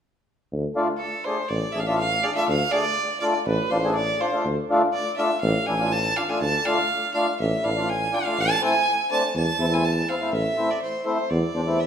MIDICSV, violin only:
0, 0, Header, 1, 2, 480
1, 0, Start_track
1, 0, Tempo, 490998
1, 488, Time_signature, 4, 2, 24, 8
1, 11601, End_track
2, 0, Start_track
2, 0, Title_t, "Violin"
2, 0, Program_c, 0, 40
2, 957, Note_on_c, 0, 69, 70
2, 1213, Note_on_c, 0, 72, 74
2, 1227, Note_off_c, 0, 69, 0
2, 1450, Note_on_c, 0, 74, 76
2, 1465, Note_off_c, 0, 72, 0
2, 1683, Note_on_c, 0, 76, 79
2, 1698, Note_off_c, 0, 74, 0
2, 1756, Note_on_c, 0, 77, 63
2, 1771, Note_off_c, 0, 76, 0
2, 1821, Note_on_c, 0, 76, 85
2, 1836, Note_off_c, 0, 77, 0
2, 1932, Note_off_c, 0, 76, 0
2, 1938, Note_on_c, 0, 77, 94
2, 2181, Note_on_c, 0, 74, 76
2, 2195, Note_off_c, 0, 77, 0
2, 2294, Note_off_c, 0, 74, 0
2, 2300, Note_on_c, 0, 76, 87
2, 2410, Note_off_c, 0, 76, 0
2, 2426, Note_on_c, 0, 77, 95
2, 2654, Note_on_c, 0, 74, 109
2, 2668, Note_off_c, 0, 77, 0
2, 3124, Note_off_c, 0, 74, 0
2, 3130, Note_on_c, 0, 74, 70
2, 3358, Note_off_c, 0, 74, 0
2, 3393, Note_on_c, 0, 71, 73
2, 3622, Note_on_c, 0, 72, 76
2, 3637, Note_off_c, 0, 71, 0
2, 3861, Note_off_c, 0, 72, 0
2, 3871, Note_on_c, 0, 74, 90
2, 4113, Note_on_c, 0, 72, 77
2, 4128, Note_off_c, 0, 74, 0
2, 4347, Note_off_c, 0, 72, 0
2, 4817, Note_on_c, 0, 74, 86
2, 5043, Note_off_c, 0, 74, 0
2, 5052, Note_on_c, 0, 76, 74
2, 5280, Note_off_c, 0, 76, 0
2, 5285, Note_on_c, 0, 77, 81
2, 5535, Note_on_c, 0, 80, 90
2, 5550, Note_off_c, 0, 77, 0
2, 5785, Note_on_c, 0, 81, 106
2, 5800, Note_off_c, 0, 80, 0
2, 6029, Note_on_c, 0, 77, 84
2, 6044, Note_off_c, 0, 81, 0
2, 6152, Note_on_c, 0, 80, 86
2, 6166, Note_off_c, 0, 77, 0
2, 6267, Note_off_c, 0, 80, 0
2, 6272, Note_on_c, 0, 81, 93
2, 6507, Note_on_c, 0, 77, 99
2, 6521, Note_off_c, 0, 81, 0
2, 6972, Note_off_c, 0, 77, 0
2, 6977, Note_on_c, 0, 77, 73
2, 7202, Note_off_c, 0, 77, 0
2, 7235, Note_on_c, 0, 76, 70
2, 7468, Note_on_c, 0, 77, 79
2, 7483, Note_off_c, 0, 76, 0
2, 7716, Note_on_c, 0, 80, 85
2, 7731, Note_off_c, 0, 77, 0
2, 7964, Note_on_c, 0, 77, 85
2, 7979, Note_off_c, 0, 80, 0
2, 8223, Note_on_c, 0, 81, 101
2, 8238, Note_off_c, 0, 77, 0
2, 8440, Note_off_c, 0, 81, 0
2, 8446, Note_on_c, 0, 80, 101
2, 8878, Note_off_c, 0, 80, 0
2, 8910, Note_on_c, 0, 81, 81
2, 9126, Note_off_c, 0, 81, 0
2, 9158, Note_on_c, 0, 81, 84
2, 9517, Note_on_c, 0, 80, 81
2, 9532, Note_off_c, 0, 81, 0
2, 9626, Note_on_c, 0, 81, 77
2, 9641, Note_off_c, 0, 80, 0
2, 9865, Note_on_c, 0, 77, 76
2, 9880, Note_off_c, 0, 81, 0
2, 10096, Note_off_c, 0, 77, 0
2, 10102, Note_on_c, 0, 76, 79
2, 10465, Note_on_c, 0, 74, 61
2, 10480, Note_off_c, 0, 76, 0
2, 10571, Note_off_c, 0, 74, 0
2, 10577, Note_on_c, 0, 72, 69
2, 10796, Note_off_c, 0, 72, 0
2, 10806, Note_on_c, 0, 72, 66
2, 11048, Note_on_c, 0, 74, 66
2, 11062, Note_off_c, 0, 72, 0
2, 11532, Note_on_c, 0, 76, 76
2, 11547, Note_off_c, 0, 74, 0
2, 11601, Note_off_c, 0, 76, 0
2, 11601, End_track
0, 0, End_of_file